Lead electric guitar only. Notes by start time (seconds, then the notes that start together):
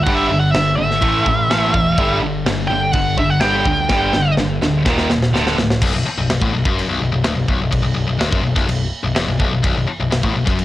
0.04 F#5
0.15 E5
0.28 E5
0.40 F#5
0.51 E5
0.77 E5
2.68 G5
2.93 F#5
3.18 E5
3.30 F#5
3.40 G5